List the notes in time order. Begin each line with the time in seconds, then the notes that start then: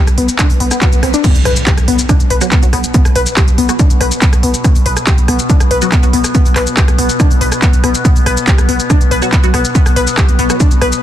0.07 B1, cross-stick, closed hi-hat, shaker
0.18 B1 B3, open hi-hat
0.29 closed hi-hat, shaker
0.39 D4, kick, cross-stick, clap, closed hi-hat, swell, shaker
0.50 B1, open hi-hat, shaker
0.60 B1 B3, open hi-hat
0.71 B3, cross-stick, closed hi-hat, shaker
0.81 F#4, kick, clap, closed hi-hat, shaker
0.92 B1, closed hi-hat, shaker
1.03 B1 C4, cross-stick, open hi-hat
1.14 D4, closed hi-hat, shaker
1.24 B2 B3, kick, closed hi-hat, crash, impact, shaker
1.35 B1, open hi-hat, shaker
1.45 B1 B4, cross-stick, open hi-hat
1.56 closed hi-hat, shaker
1.67 B1 G4, kick, clap, closed hi-hat, shaker
1.77 B1, cross-stick, closed hi-hat, shaker
1.88 B1 B3, open hi-hat
1.99 closed hi-hat, shaker
2.09 D4, kick, cross-stick, closed hi-hat, shaker
2.20 B1, closed hi-hat, shaker
2.30 B1 B4, open hi-hat
2.41 F#3 B3 F#4, cross-stick, closed hi-hat, shaker
2.52 B3, kick, clap, closed hi-hat, shaker
2.62 B1 F#3 B3 F#4, closed hi-hat, shaker
2.73 B1 B3, cross-stick, open hi-hat
2.84 closed hi-hat, shaker
2.94 B3, kick, closed hi-hat, shaker
3.05 B1, cross-stick, open hi-hat, shaker
3.15 B1 B4, open hi-hat
3.26 closed hi-hat, shaker
3.37 B1 G4, kick, cross-stick, clap, closed hi-hat, shaker
3.48 B1, closed hi-hat, shaker
3.58 B1 B3, open hi-hat
3.69 F#3 B3 F#4, cross-stick, closed hi-hat, shaker
3.79 D4, kick, closed hi-hat, shaker
3.90 B1, closed hi-hat, shaker
4.01 B1 B4, cross-stick, open hi-hat
4.11 closed hi-hat, shaker
4.22 B3, kick, clap, closed hi-hat, shaker
4.33 B1, cross-stick, closed hi-hat, shaker
4.43 B1 B3, open hi-hat
4.54 closed hi-hat, shaker
4.64 B3, kick, cross-stick, closed hi-hat, shaker
4.75 B1, open hi-hat, shaker
4.86 B1 B4, open hi-hat
4.97 cross-stick, closed hi-hat, shaker
5.07 B1 G4, kick, clap, closed hi-hat, shaker
5.18 B1, closed hi-hat, shaker
5.28 B1 B3, cross-stick, open hi-hat
5.39 closed hi-hat, shaker
5.50 D4, kick, closed hi-hat, shaker
5.60 B1, cross-stick, closed hi-hat, shaker
5.71 B1 B4, open hi-hat
5.82 F#3 B3 F#4, closed hi-hat, shaker
5.92 B3, kick, cross-stick, clap, closed hi-hat, shaker
6.03 B1 F#3 B3 F#4, closed hi-hat, shaker
6.13 B1 B3, open hi-hat
6.24 cross-stick, closed hi-hat, shaker
6.34 B3, kick, closed hi-hat, shaker
6.46 B1, open hi-hat, shaker
6.56 B1 B4, cross-stick, clap, open hi-hat
6.67 closed hi-hat, shaker
6.77 B1 G4, kick, clap, closed hi-hat, shaker
6.88 B1, cross-stick, closed hi-hat, shaker
6.98 B1 B3, open hi-hat
7.09 closed hi-hat, shaker
7.20 D4, kick, cross-stick, closed hi-hat, shaker
7.31 B1, open hi-hat, shaker
7.41 B1 B4, open hi-hat
7.52 cross-stick, closed hi-hat, shaker
7.62 B3, kick, clap, closed hi-hat, shaker
7.73 B1, closed hi-hat, shaker
7.83 B1 B3, cross-stick, open hi-hat
7.95 closed hi-hat, shaker
8.05 B3, kick, closed hi-hat, shaker
8.16 B1, open hi-hat, shaker
8.26 B1 B4, cross-stick, open hi-hat
8.37 closed hi-hat, shaker
8.47 B1 G4, kick, clap, closed hi-hat, shaker
8.58 B1, cross-stick, closed hi-hat, shaker
8.69 B1 B3, open hi-hat
8.80 closed hi-hat, shaker
8.90 D4, kick, cross-stick, closed hi-hat, shaker
9.01 B1, closed hi-hat, shaker
9.11 B1 B4, open hi-hat
9.22 F#3 B3 F#4, cross-stick, closed hi-hat, shaker
9.32 B3, kick, clap, closed hi-hat, shaker
9.43 B1 F#3 B3 F#4, closed hi-hat, shaker
9.54 B1 B3, cross-stick, open hi-hat
9.65 closed hi-hat, shaker
9.75 B3, kick, closed hi-hat, shaker
9.86 B1, cross-stick, open hi-hat, shaker
9.96 B1 B4, open hi-hat
10.07 closed hi-hat, shaker
10.18 B1 G4, kick, cross-stick, clap, closed hi-hat, shaker
10.28 B1, closed hi-hat, shaker
10.39 B1 B3, open hi-hat
10.50 F#3 B3 F#4, cross-stick, closed hi-hat, shaker
10.60 D4, kick, closed hi-hat, shaker
10.71 B1, closed hi-hat, shaker
10.81 B1 B4, cross-stick, open hi-hat
10.92 closed hi-hat, shaker